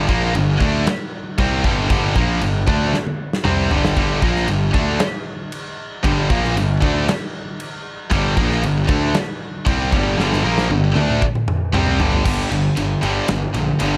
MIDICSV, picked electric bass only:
0, 0, Header, 1, 2, 480
1, 0, Start_track
1, 0, Key_signature, -2, "minor"
1, 0, Tempo, 518135
1, 1754, Time_signature, 4, 2, 24, 8
1, 12945, End_track
2, 0, Start_track
2, 0, Title_t, "Picked electric bass"
2, 0, Program_c, 0, 34
2, 88, Note_on_c, 0, 34, 93
2, 304, Note_off_c, 0, 34, 0
2, 326, Note_on_c, 0, 31, 75
2, 543, Note_off_c, 0, 31, 0
2, 564, Note_on_c, 0, 38, 99
2, 782, Note_off_c, 0, 38, 0
2, 1286, Note_on_c, 0, 36, 93
2, 1503, Note_off_c, 0, 36, 0
2, 1525, Note_on_c, 0, 31, 94
2, 1743, Note_off_c, 0, 31, 0
2, 1762, Note_on_c, 0, 31, 91
2, 1981, Note_off_c, 0, 31, 0
2, 1999, Note_on_c, 0, 34, 96
2, 2219, Note_off_c, 0, 34, 0
2, 2235, Note_on_c, 0, 31, 80
2, 2457, Note_off_c, 0, 31, 0
2, 2480, Note_on_c, 0, 38, 92
2, 2700, Note_off_c, 0, 38, 0
2, 3195, Note_on_c, 0, 36, 91
2, 3418, Note_off_c, 0, 36, 0
2, 3434, Note_on_c, 0, 31, 104
2, 3657, Note_off_c, 0, 31, 0
2, 3677, Note_on_c, 0, 31, 91
2, 3899, Note_off_c, 0, 31, 0
2, 3911, Note_on_c, 0, 34, 95
2, 4136, Note_off_c, 0, 34, 0
2, 4157, Note_on_c, 0, 31, 70
2, 4379, Note_off_c, 0, 31, 0
2, 4395, Note_on_c, 0, 38, 97
2, 4618, Note_off_c, 0, 38, 0
2, 5602, Note_on_c, 0, 31, 97
2, 5822, Note_off_c, 0, 31, 0
2, 5842, Note_on_c, 0, 34, 102
2, 6062, Note_off_c, 0, 34, 0
2, 6080, Note_on_c, 0, 31, 69
2, 6300, Note_off_c, 0, 31, 0
2, 6325, Note_on_c, 0, 38, 99
2, 6543, Note_off_c, 0, 38, 0
2, 7518, Note_on_c, 0, 31, 98
2, 7740, Note_off_c, 0, 31, 0
2, 7757, Note_on_c, 0, 34, 98
2, 7979, Note_off_c, 0, 34, 0
2, 7994, Note_on_c, 0, 31, 74
2, 8217, Note_off_c, 0, 31, 0
2, 8234, Note_on_c, 0, 38, 101
2, 8457, Note_off_c, 0, 38, 0
2, 8953, Note_on_c, 0, 36, 92
2, 9177, Note_off_c, 0, 36, 0
2, 9198, Note_on_c, 0, 31, 102
2, 9419, Note_off_c, 0, 31, 0
2, 9434, Note_on_c, 0, 31, 93
2, 9657, Note_off_c, 0, 31, 0
2, 9671, Note_on_c, 0, 34, 93
2, 9895, Note_off_c, 0, 34, 0
2, 9907, Note_on_c, 0, 31, 75
2, 10133, Note_off_c, 0, 31, 0
2, 10148, Note_on_c, 0, 38, 102
2, 10373, Note_off_c, 0, 38, 0
2, 10866, Note_on_c, 0, 36, 91
2, 11093, Note_off_c, 0, 36, 0
2, 11107, Note_on_c, 0, 31, 95
2, 11333, Note_off_c, 0, 31, 0
2, 11352, Note_on_c, 0, 31, 88
2, 11503, Note_off_c, 0, 31, 0
2, 11595, Note_on_c, 0, 31, 85
2, 11745, Note_off_c, 0, 31, 0
2, 11836, Note_on_c, 0, 31, 77
2, 11985, Note_off_c, 0, 31, 0
2, 12073, Note_on_c, 0, 31, 89
2, 12224, Note_off_c, 0, 31, 0
2, 12313, Note_on_c, 0, 31, 86
2, 12464, Note_off_c, 0, 31, 0
2, 12548, Note_on_c, 0, 34, 85
2, 12700, Note_off_c, 0, 34, 0
2, 12793, Note_on_c, 0, 31, 89
2, 12944, Note_off_c, 0, 31, 0
2, 12945, End_track
0, 0, End_of_file